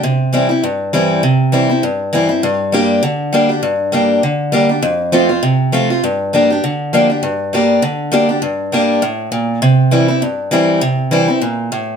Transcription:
0.03 C3
0.33 E3 G3 C4 E4
0.49 C4 E4
0.63 G2
0.93 E3 G3 C4 E4
1.23 C3
1.52 E3 G3 C4 E4
1.69 C4 E4
1.83 G2
2.13 E3 G3 C4 E4
2.29 C4 E4
2.43 G2
2.72 G3 A#3 D4 G4
3.03 D3
3.33 G3 A#3 D4 G4
3.49 D4 G4
3.63 G2
3.92 G3 A#3 D4 G4
4.23 D3
4.52 G3 A#3 D4 G4
4.69 D4 G4
4.82 F2
5.12 F3 A3 C4 F4
5.29 C4 F4
5.43 C3
5.72 F3 A3 C4 F4
5.90 C4 F4
6.04 G2
6.33 F3 A#3 D4 G4
6.50 D4 G4
6.64 D3
6.93 F3 A#3 D4 G4
7.10 D4 G4
7.23 G2
7.53 G3 A#3 D4 G4
7.82 D3
8.12 G3 A#3 D4 G4
8.29 D4 G4
8.42 G2
8.72 G3 A#3 D4 G4
9.02 A2
9.32 A#2
9.62 C3
9.91 E3 G3 C4 E4
10.08 C4 E4
10.22 G2
10.51 E3 G3 C4 E4
10.81 C3
11.11 E3 G3 C4 E4
11.28 C4 E4
11.41 A#2
11.72 A2

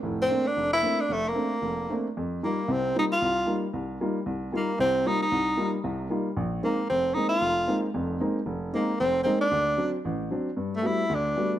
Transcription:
0.03 F1 A2
0.22 C4
0.30 A3 A#3 C4 D4
0.47 D4
0.57 F1
0.73 E4
0.83 A3 A#3 C4 D4
1.01 D4
1.09 F1 A3
1.28 A#3
1.35 A3 A#3 C4 D4
1.62 F1
1.90 A3 A#3 C4 D4
2.17 F2
2.43 G3 A#3 D#4 F4
2.68 C2 C3
2.72 C4
2.95 G3 A#3 D#4 F4
2.99 D#4
3.13 F4
3.22 C2
3.46 G3 A#3 D#4 F4
3.73 C2
4.01 G3 A#3 D#4 F4
4.26 C2
4.52 G3 A#3 D#4 F4
4.56 A#3
4.79 C2 C3 C4
5.05 G3 A#3 D#4 F4
5.23 D#4
5.32 C2
5.57 G3 A#3 D#4 F4
5.84 C2 C3
6.10 G3 A#3 D#4 F4
6.36 A#1
6.63 G#3 A#3 C4 D#4
6.89 F1 C4
7.14 G#3 A#3 C4 D#4
7.29 F4
7.41 F1
7.67 G#3 A#3 C4 D#4
7.94 F1 F2
8.20 G#3 A#3 C4 D#4
8.46 F1
8.73 G#3 A#3 C4 D#4
9.00 F1 C4
9.24 G#3 A#3 C4 D#4
9.41 D4
9.51 D2
9.77 F#3 C4 D4
10.05 A1
10.31 F#3 C4 D4
10.57 G2
10.77 A3
10.82 G3 A3 B3 F#4
10.87 E4
11.09 D2
11.14 D4
11.36 G3 A3 B3 F#4

